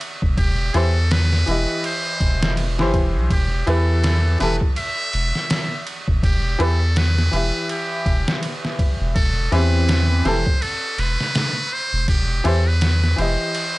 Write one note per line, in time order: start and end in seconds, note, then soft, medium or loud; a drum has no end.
0.01 ride medium
0.22 0.36 E1 medium
0.22 kick medium
0.37 0.71 E1 loud
0.37 0.77 G4 medium
0.37 kick loud
0.37 ride medium
0.74 1.45 E2 medium
0.74 0.91 E3 medium
0.74 0.91 E4 medium
0.74 0.91 G4 medium
0.74 1.13 A4 medium
0.74 0.92 C5 loud
0.74 ride medium
1.11 1.84 B4 loud
1.11 snare loud
1.11 ride medium
1.33 snare soft
1.46 1.66 E1 loud
1.46 2.74 E3 medium
1.46 2.75 E4 medium
1.46 2.75 G4 medium
1.46 ride medium
1.51 2.76 D#5 medium
1.84 2.54 C5 loud
1.84 ride medium
2.21 2.80 E1 medium
2.21 kick loud
2.21 ride medium
2.43 snare loud
2.57 ride medium
2.79 2.96 G1 medium
2.79 3.29 E3 medium
2.79 3.29 E4 medium
2.79 3.30 G4 medium
2.79 3.30 C5 loud
2.79 snare soft
2.94 3.17 E1 medium
2.94 kick medium
2.94 ride medium
3.15 3.29 B1 loud
3.30 3.63 E1 loud
3.30 3.70 G4 medium
3.30 kick loud
3.30 ride medium
3.67 4.37 E2 medium
3.67 4.36 E3 medium
3.67 4.37 E4 medium
3.67 4.37 G4 medium
3.67 4.40 A4 medium
3.67 4.38 B4 loud
3.67 ride medium
4.04 snare loud
4.04 ride medium
4.39 4.59 E1 loud
4.39 4.56 E3 medium
4.39 4.56 E4 medium
4.39 4.57 G4 medium
4.39 4.57 A4 medium
4.39 4.56 B4 medium
4.39 snare soft
4.39 ride medium
4.61 kick medium
4.76 5.83 E5 loud
4.76 ride medium
5.13 5.32 E1 medium
5.13 ride medium
5.35 snare soft
5.50 snare loud
5.50 ride medium
5.87 ride medium
6.08 6.21 E1 medium
6.08 kick medium
6.23 6.56 E1 loud
6.23 6.63 G4 medium
6.23 kick loud
6.23 ride medium
6.59 7.30 E2 medium
6.59 6.75 E3 medium
6.59 6.76 E4 medium
6.59 6.76 G4 medium
6.59 6.99 A4 loud
6.59 6.77 B4 loud
6.59 ride medium
6.96 7.70 B4 loud
6.96 snare loud
6.96 ride medium
7.19 snare soft
7.31 7.52 E1 loud
7.31 9.13 E3 medium
7.31 9.14 E4 medium
7.31 9.15 G4 medium
7.31 ride medium
7.36 9.16 E5 medium
7.69 8.39 G4 medium
7.69 ride medium
8.06 8.25 E1 medium
8.06 kick loud
8.06 ride medium
8.28 snare loud
8.43 ride medium
8.65 snare soft
8.79 kick loud
8.79 ride medium
9.01 9.14 E1 medium
9.16 9.49 E1 loud
9.16 9.54 A4 loud
9.16 kick loud
9.16 ride medium
9.52 10.22 E2 medium
9.52 10.22 E3 medium
9.52 10.23 C4 medium
9.52 10.22 E4 medium
9.52 10.22 G4 medium
9.52 10.27 B4 loud
9.52 ride medium
9.89 snare loud
9.89 ride medium
10.25 10.44 E1 loud
10.25 10.41 E3 medium
10.25 10.42 E4 medium
10.25 10.42 G4 medium
10.25 10.43 A4 loud
10.25 10.63 C5 loud
10.25 snare medium
10.25 ride medium
10.46 kick loud
10.62 11.01 A4 loud
10.62 ride medium
10.98 11.17 E1 medium
10.98 11.75 B4 loud
10.98 ride medium
11.21 snare soft
11.35 snare loud
11.35 ride medium
11.73 12.09 C5 loud
11.93 12.06 E1 medium
12.08 12.41 E1 medium
12.08 12.48 G4 loud
12.08 kick loud
12.08 ride medium
12.44 13.15 E2 medium
12.44 12.61 E3 loud
12.44 12.61 E4 medium
12.44 12.62 G4 medium
12.44 12.69 A4 medium
12.44 12.62 C5 loud
12.44 ride medium
12.67 13.21 B4 loud
12.81 snare loud
12.81 ride medium
13.04 snare soft
13.16 13.37 E1 loud
13.16 13.78 E3 medium
13.16 13.78 E4 medium
13.16 13.78 G4 medium
13.16 13.78 C5 medium
13.16 ride medium
13.22 13.78 D#5 medium
13.55 ride medium